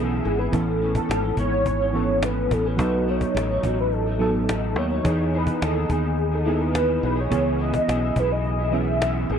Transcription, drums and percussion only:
0.26 cajon slap
0.40 cajon slap
0.53 cajon bass
0.68 cajon slap
0.82 cajon slap
0.95 cajon bass
1.11 cajon slap
1.25 cajon slap
1.37 cajon bass
1.52 cajon slap
1.65 cajon bass, cajon slap
1.95 cajon slap
2.09 cajon slap
2.23 cajon slap
2.36 cajon slap
2.51 cajon bass
2.79 cajon bass
3.08 cajon slap
3.21 cajon bass
3.37 cajon slap
3.63 cajon bass
3.78 cajon slap
3.92 cajon slap
4.07 cajon slap
4.21 cajon slap
4.35 cajon slap
4.49 cajon slap
4.77 cajon slap
4.91 cajon slap
5.05 cajon bass
5.33 cajon slap
5.47 cajon bass
5.62 cajon slap
5.77 cajon slap
5.90 cajon bass
6.18 cajon slap
6.34 cajon slap
6.48 cajon slap
6.62 cajon slap
6.75 cajon slap
7.04 cajon slap
7.18 cajon slap
7.32 cajon bass
7.61 cajon slap
7.73 cajon bass
7.89 cajon slap
8.03 cajon slap
8.16 cajon bass
8.45 cajon slap
8.60 cajon slap
8.74 cajon slap
8.89 cajon slap
9.02 cajon slap
9.30 cajon slap

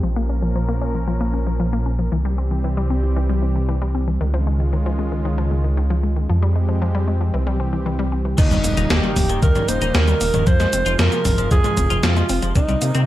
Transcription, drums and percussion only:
8.38 kick, closed hi-hat, crash, cabasa
8.51 closed hi-hat, cabasa
8.64 closed hi-hat, cabasa
8.77 closed hi-hat, cabasa
8.90 snare, closed hi-hat, cabasa
9.03 closed hi-hat
9.16 kick, open hi-hat, mid tom, cabasa
9.30 closed hi-hat, cabasa
9.43 kick, closed hi-hat, cabasa
9.56 closed hi-hat, mid tom, cabasa
9.68 closed hi-hat, cabasa
9.82 closed hi-hat, cabasa
9.95 snare, closed hi-hat, cabasa
10.08 closed hi-hat, cabasa
10.21 open hi-hat, cabasa
10.34 closed hi-hat, mid tom, cabasa
10.47 kick, closed hi-hat, cabasa
10.60 snare, closed hi-hat, cabasa
10.73 closed hi-hat, cabasa
10.86 closed hi-hat, cabasa
10.99 snare, closed hi-hat, cabasa
11.12 closed hi-hat, cabasa
11.25 kick, open hi-hat, mid tom, cabasa
11.38 closed hi-hat, cabasa
11.51 kick, closed hi-hat, cabasa
11.64 closed hi-hat, mid tom, cabasa
11.77 kick, closed hi-hat, mid tom, cabasa
11.90 closed hi-hat, cabasa
12.03 snare, closed hi-hat, cabasa
12.16 closed hi-hat, cabasa
12.29 open hi-hat, cabasa
12.42 closed hi-hat, cabasa
12.56 kick, closed hi-hat, cabasa
12.69 closed hi-hat, cabasa
12.82 closed hi-hat, cabasa
12.95 closed hi-hat, cabasa

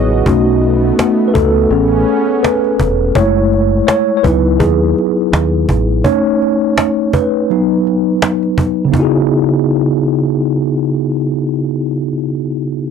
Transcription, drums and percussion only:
0.26 cajon bass
0.64 cajon slap
0.99 cajon slap
1.35 cajon bass
1.73 cajon slap
2.09 cajon slap
2.44 cajon slap
2.65 cajon slap
2.80 cajon bass
3.15 cajon bass
3.53 cajon slap
3.88 cajon slap
4.24 cajon bass
4.60 cajon bass
4.98 cajon slap
5.33 cajon slap
5.69 cajon bass
6.05 cajon bass
6.42 cajon slap
6.78 cajon slap
7.13 cajon bass
7.51 cajon slap
7.87 cajon slap
8.22 cajon slap
8.43 cajon slap
8.58 cajon bass
8.94 cajon bass

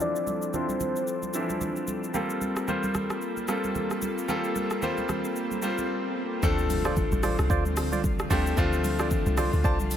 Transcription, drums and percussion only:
0.00 low conga, shaker
0.16 shaker
0.27 high conga, shaker
0.42 shaker
0.54 low conga, shaker
0.69 high conga, shaker
0.80 high conga, low conga, shaker
0.96 shaker
1.07 shaker
1.22 high conga, shaker
1.34 shaker
1.50 high conga, shaker
1.61 high conga, low conga, shaker
1.76 shaker
1.88 high conga, shaker
2.04 shaker
2.14 low conga, shaker
2.30 shaker
2.41 high conga, shaker
2.56 cross-stick, shaker
2.68 low conga, shaker
2.83 high conga, shaker
2.95 cross-stick, high conga, low conga, shaker
3.10 cross-stick, shaker
3.22 shaker
3.37 high conga, shaker
3.48 cross-stick, shaker
3.64 high conga, shaker
3.75 high conga, low conga, shaker
3.91 cross-stick, shaker
4.02 high conga, shaker
4.18 shaker
4.29 low conga, shaker
4.44 shaker
4.56 high conga, shaker
4.71 cross-stick, shaker
4.82 low conga, shaker
4.98 high conga, shaker
5.09 cross-stick, high conga, low conga, shaker
5.24 shaker
5.36 shaker
5.51 high conga, shaker
5.62 shaker
5.78 high conga, shaker
6.43 kick, low conga, shaker
6.59 shaker
6.70 open hi-hat, high conga, shaker
6.85 cross-stick, shaker
6.96 kick, low conga, shaker
7.12 high conga, shaker
7.23 cross-stick, open hi-hat, high conga, low conga, shaker
7.39 cross-stick, shaker
7.50 kick, shaker
7.65 high conga, shaker
7.77 cross-stick, open hi-hat, shaker
7.92 high conga, shaker
8.04 kick, high conga, low conga, shaker
8.19 cross-stick, shaker
8.31 kick, open hi-hat, high conga, shaker
8.47 shaker
8.57 kick, low conga, shaker
8.73 shaker
8.84 open hi-hat, high conga, shaker
8.99 cross-stick, shaker
9.11 kick, low conga, shaker
9.26 high conga, shaker
9.37 cross-stick, open hi-hat, high conga, low conga, shaker
9.53 shaker
9.64 kick, shaker
9.80 high conga, shaker
9.91 open hi-hat, shaker

